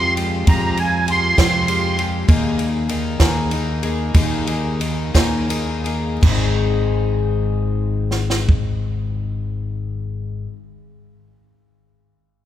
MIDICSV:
0, 0, Header, 1, 5, 480
1, 0, Start_track
1, 0, Key_signature, -4, "major"
1, 0, Tempo, 603015
1, 378, Time_signature, 6, 3, 24, 8
1, 2299, Tempo, 636943
1, 3739, Tempo, 710059
1, 4699, Tempo, 753769
1, 8667, End_track
2, 0, Start_track
2, 0, Title_t, "Accordion"
2, 0, Program_c, 0, 21
2, 0, Note_on_c, 0, 84, 122
2, 108, Note_off_c, 0, 84, 0
2, 380, Note_on_c, 0, 82, 89
2, 626, Note_off_c, 0, 82, 0
2, 629, Note_on_c, 0, 80, 88
2, 870, Note_off_c, 0, 80, 0
2, 881, Note_on_c, 0, 84, 118
2, 1105, Note_off_c, 0, 84, 0
2, 1117, Note_on_c, 0, 84, 109
2, 1614, Note_off_c, 0, 84, 0
2, 8667, End_track
3, 0, Start_track
3, 0, Title_t, "Twelve-string acoustic guitar"
3, 0, Program_c, 1, 25
3, 0, Note_on_c, 1, 53, 65
3, 0, Note_on_c, 1, 56, 64
3, 0, Note_on_c, 1, 65, 72
3, 0, Note_on_c, 1, 67, 77
3, 121, Note_off_c, 1, 67, 0
3, 127, Note_off_c, 1, 65, 0
3, 131, Note_on_c, 1, 67, 57
3, 133, Note_off_c, 1, 56, 0
3, 136, Note_off_c, 1, 53, 0
3, 136, Note_on_c, 1, 65, 59
3, 142, Note_on_c, 1, 56, 52
3, 149, Note_on_c, 1, 53, 47
3, 369, Note_off_c, 1, 53, 0
3, 373, Note_off_c, 1, 56, 0
3, 374, Note_off_c, 1, 67, 0
3, 375, Note_on_c, 1, 41, 86
3, 377, Note_off_c, 1, 65, 0
3, 379, Note_on_c, 1, 48, 92
3, 379, Note_on_c, 1, 53, 91
3, 383, Note_on_c, 1, 56, 92
3, 387, Note_on_c, 1, 65, 102
3, 389, Note_on_c, 1, 67, 92
3, 606, Note_off_c, 1, 65, 0
3, 612, Note_off_c, 1, 56, 0
3, 615, Note_on_c, 1, 65, 55
3, 616, Note_off_c, 1, 41, 0
3, 618, Note_off_c, 1, 48, 0
3, 618, Note_off_c, 1, 53, 0
3, 622, Note_on_c, 1, 56, 48
3, 623, Note_off_c, 1, 67, 0
3, 626, Note_on_c, 1, 53, 47
3, 836, Note_off_c, 1, 53, 0
3, 845, Note_off_c, 1, 56, 0
3, 846, Note_on_c, 1, 53, 68
3, 848, Note_off_c, 1, 65, 0
3, 854, Note_on_c, 1, 56, 72
3, 857, Note_on_c, 1, 65, 77
3, 866, Note_on_c, 1, 67, 79
3, 1078, Note_off_c, 1, 67, 0
3, 1080, Note_off_c, 1, 65, 0
3, 1085, Note_off_c, 1, 53, 0
3, 1088, Note_off_c, 1, 56, 0
3, 1088, Note_on_c, 1, 67, 78
3, 1090, Note_on_c, 1, 65, 79
3, 1095, Note_on_c, 1, 53, 69
3, 1097, Note_on_c, 1, 56, 79
3, 1099, Note_on_c, 1, 48, 66
3, 1104, Note_on_c, 1, 41, 68
3, 1318, Note_off_c, 1, 53, 0
3, 1325, Note_off_c, 1, 56, 0
3, 1328, Note_on_c, 1, 53, 64
3, 1332, Note_off_c, 1, 67, 0
3, 1333, Note_off_c, 1, 65, 0
3, 1334, Note_on_c, 1, 56, 71
3, 1338, Note_off_c, 1, 48, 0
3, 1340, Note_off_c, 1, 41, 0
3, 1341, Note_on_c, 1, 65, 80
3, 1347, Note_on_c, 1, 67, 76
3, 1563, Note_off_c, 1, 67, 0
3, 1570, Note_off_c, 1, 65, 0
3, 1572, Note_off_c, 1, 53, 0
3, 1572, Note_on_c, 1, 67, 66
3, 1575, Note_off_c, 1, 56, 0
3, 1580, Note_on_c, 1, 65, 54
3, 1586, Note_on_c, 1, 56, 55
3, 1590, Note_on_c, 1, 53, 48
3, 1812, Note_off_c, 1, 53, 0
3, 1814, Note_off_c, 1, 67, 0
3, 1815, Note_on_c, 1, 51, 111
3, 1816, Note_off_c, 1, 56, 0
3, 1818, Note_off_c, 1, 65, 0
3, 1819, Note_on_c, 1, 58, 114
3, 1824, Note_on_c, 1, 63, 120
3, 1827, Note_on_c, 1, 68, 117
3, 2048, Note_off_c, 1, 68, 0
3, 2056, Note_off_c, 1, 51, 0
3, 2058, Note_off_c, 1, 58, 0
3, 2058, Note_off_c, 1, 63, 0
3, 2058, Note_on_c, 1, 68, 58
3, 2068, Note_on_c, 1, 63, 53
3, 2077, Note_on_c, 1, 58, 49
3, 2297, Note_off_c, 1, 58, 0
3, 2298, Note_on_c, 1, 51, 85
3, 2299, Note_off_c, 1, 68, 0
3, 2302, Note_off_c, 1, 63, 0
3, 2306, Note_on_c, 1, 58, 69
3, 2311, Note_on_c, 1, 63, 83
3, 2315, Note_on_c, 1, 68, 94
3, 2528, Note_off_c, 1, 68, 0
3, 2529, Note_off_c, 1, 51, 0
3, 2531, Note_off_c, 1, 63, 0
3, 2533, Note_off_c, 1, 58, 0
3, 2537, Note_on_c, 1, 68, 102
3, 2540, Note_on_c, 1, 63, 86
3, 2545, Note_on_c, 1, 58, 89
3, 2550, Note_on_c, 1, 51, 75
3, 2757, Note_off_c, 1, 51, 0
3, 2766, Note_off_c, 1, 58, 0
3, 2766, Note_on_c, 1, 51, 74
3, 2767, Note_off_c, 1, 68, 0
3, 2769, Note_off_c, 1, 63, 0
3, 2775, Note_on_c, 1, 58, 85
3, 2781, Note_on_c, 1, 63, 83
3, 2784, Note_on_c, 1, 68, 91
3, 3000, Note_off_c, 1, 68, 0
3, 3002, Note_off_c, 1, 51, 0
3, 3006, Note_off_c, 1, 58, 0
3, 3009, Note_off_c, 1, 63, 0
3, 3009, Note_on_c, 1, 68, 71
3, 3020, Note_on_c, 1, 63, 65
3, 3026, Note_on_c, 1, 58, 63
3, 3240, Note_off_c, 1, 58, 0
3, 3243, Note_off_c, 1, 63, 0
3, 3244, Note_on_c, 1, 51, 95
3, 3246, Note_off_c, 1, 68, 0
3, 3250, Note_on_c, 1, 58, 109
3, 3252, Note_on_c, 1, 63, 105
3, 3255, Note_on_c, 1, 68, 122
3, 3480, Note_off_c, 1, 68, 0
3, 3489, Note_off_c, 1, 51, 0
3, 3489, Note_off_c, 1, 63, 0
3, 3489, Note_on_c, 1, 68, 64
3, 3491, Note_off_c, 1, 58, 0
3, 3498, Note_on_c, 1, 63, 55
3, 3508, Note_on_c, 1, 58, 58
3, 3737, Note_off_c, 1, 58, 0
3, 3737, Note_on_c, 1, 51, 74
3, 3739, Note_off_c, 1, 68, 0
3, 3740, Note_off_c, 1, 63, 0
3, 3745, Note_on_c, 1, 58, 84
3, 3749, Note_on_c, 1, 63, 75
3, 3755, Note_on_c, 1, 68, 81
3, 3964, Note_off_c, 1, 68, 0
3, 3965, Note_off_c, 1, 63, 0
3, 3968, Note_off_c, 1, 51, 0
3, 3972, Note_off_c, 1, 58, 0
3, 3972, Note_on_c, 1, 68, 91
3, 3973, Note_on_c, 1, 63, 90
3, 3980, Note_on_c, 1, 58, 83
3, 3983, Note_on_c, 1, 51, 68
3, 4194, Note_off_c, 1, 51, 0
3, 4200, Note_off_c, 1, 58, 0
3, 4202, Note_on_c, 1, 51, 79
3, 4207, Note_off_c, 1, 63, 0
3, 4207, Note_off_c, 1, 68, 0
3, 4208, Note_on_c, 1, 58, 75
3, 4214, Note_on_c, 1, 63, 82
3, 4216, Note_on_c, 1, 68, 72
3, 4436, Note_off_c, 1, 68, 0
3, 4444, Note_on_c, 1, 68, 61
3, 4447, Note_off_c, 1, 51, 0
3, 4447, Note_off_c, 1, 63, 0
3, 4450, Note_off_c, 1, 58, 0
3, 4455, Note_on_c, 1, 63, 63
3, 4462, Note_on_c, 1, 58, 55
3, 4664, Note_on_c, 1, 44, 92
3, 4694, Note_on_c, 1, 51, 89
3, 4697, Note_off_c, 1, 68, 0
3, 4702, Note_off_c, 1, 63, 0
3, 4706, Note_off_c, 1, 58, 0
3, 4720, Note_on_c, 1, 56, 100
3, 4739, Note_on_c, 1, 60, 95
3, 4760, Note_on_c, 1, 63, 103
3, 4781, Note_on_c, 1, 68, 102
3, 7389, Note_off_c, 1, 44, 0
3, 7418, Note_off_c, 1, 51, 0
3, 7443, Note_off_c, 1, 56, 0
3, 7462, Note_off_c, 1, 60, 0
3, 7484, Note_off_c, 1, 63, 0
3, 7504, Note_off_c, 1, 68, 0
3, 8667, End_track
4, 0, Start_track
4, 0, Title_t, "Fingered electric bass"
4, 0, Program_c, 2, 33
4, 0, Note_on_c, 2, 41, 102
4, 347, Note_off_c, 2, 41, 0
4, 374, Note_on_c, 2, 41, 103
4, 1063, Note_off_c, 2, 41, 0
4, 1099, Note_on_c, 2, 41, 103
4, 1785, Note_off_c, 2, 41, 0
4, 1819, Note_on_c, 2, 39, 105
4, 2501, Note_off_c, 2, 39, 0
4, 2533, Note_on_c, 2, 39, 103
4, 3213, Note_off_c, 2, 39, 0
4, 3247, Note_on_c, 2, 39, 116
4, 3944, Note_off_c, 2, 39, 0
4, 3975, Note_on_c, 2, 39, 96
4, 4675, Note_off_c, 2, 39, 0
4, 4704, Note_on_c, 2, 32, 96
4, 7401, Note_off_c, 2, 32, 0
4, 8667, End_track
5, 0, Start_track
5, 0, Title_t, "Drums"
5, 135, Note_on_c, 9, 51, 71
5, 215, Note_off_c, 9, 51, 0
5, 374, Note_on_c, 9, 51, 92
5, 377, Note_on_c, 9, 36, 122
5, 453, Note_off_c, 9, 51, 0
5, 457, Note_off_c, 9, 36, 0
5, 615, Note_on_c, 9, 51, 58
5, 695, Note_off_c, 9, 51, 0
5, 858, Note_on_c, 9, 51, 64
5, 937, Note_off_c, 9, 51, 0
5, 1099, Note_on_c, 9, 36, 79
5, 1099, Note_on_c, 9, 38, 114
5, 1099, Note_on_c, 9, 51, 86
5, 1179, Note_off_c, 9, 36, 0
5, 1179, Note_off_c, 9, 38, 0
5, 1179, Note_off_c, 9, 51, 0
5, 1338, Note_on_c, 9, 51, 70
5, 1418, Note_off_c, 9, 51, 0
5, 1581, Note_on_c, 9, 51, 66
5, 1660, Note_off_c, 9, 51, 0
5, 1820, Note_on_c, 9, 36, 127
5, 1820, Note_on_c, 9, 51, 88
5, 1899, Note_off_c, 9, 36, 0
5, 1900, Note_off_c, 9, 51, 0
5, 2061, Note_on_c, 9, 51, 60
5, 2141, Note_off_c, 9, 51, 0
5, 2302, Note_on_c, 9, 51, 67
5, 2378, Note_off_c, 9, 51, 0
5, 2532, Note_on_c, 9, 38, 121
5, 2532, Note_on_c, 9, 51, 74
5, 2534, Note_on_c, 9, 36, 82
5, 2607, Note_off_c, 9, 38, 0
5, 2607, Note_off_c, 9, 51, 0
5, 2609, Note_off_c, 9, 36, 0
5, 2768, Note_on_c, 9, 51, 65
5, 2844, Note_off_c, 9, 51, 0
5, 3007, Note_on_c, 9, 51, 60
5, 3082, Note_off_c, 9, 51, 0
5, 3246, Note_on_c, 9, 51, 98
5, 3247, Note_on_c, 9, 36, 116
5, 3321, Note_off_c, 9, 51, 0
5, 3322, Note_off_c, 9, 36, 0
5, 3493, Note_on_c, 9, 51, 65
5, 3569, Note_off_c, 9, 51, 0
5, 3745, Note_on_c, 9, 51, 70
5, 3812, Note_off_c, 9, 51, 0
5, 3975, Note_on_c, 9, 36, 78
5, 3976, Note_on_c, 9, 38, 116
5, 3976, Note_on_c, 9, 51, 86
5, 4042, Note_off_c, 9, 36, 0
5, 4044, Note_off_c, 9, 38, 0
5, 4044, Note_off_c, 9, 51, 0
5, 4213, Note_on_c, 9, 51, 78
5, 4281, Note_off_c, 9, 51, 0
5, 4453, Note_on_c, 9, 51, 64
5, 4521, Note_off_c, 9, 51, 0
5, 4704, Note_on_c, 9, 36, 117
5, 4704, Note_on_c, 9, 49, 100
5, 4768, Note_off_c, 9, 36, 0
5, 4768, Note_off_c, 9, 49, 0
5, 5903, Note_on_c, 9, 38, 55
5, 5967, Note_off_c, 9, 38, 0
5, 6024, Note_on_c, 9, 38, 80
5, 6088, Note_off_c, 9, 38, 0
5, 6143, Note_on_c, 9, 36, 91
5, 6207, Note_off_c, 9, 36, 0
5, 8667, End_track
0, 0, End_of_file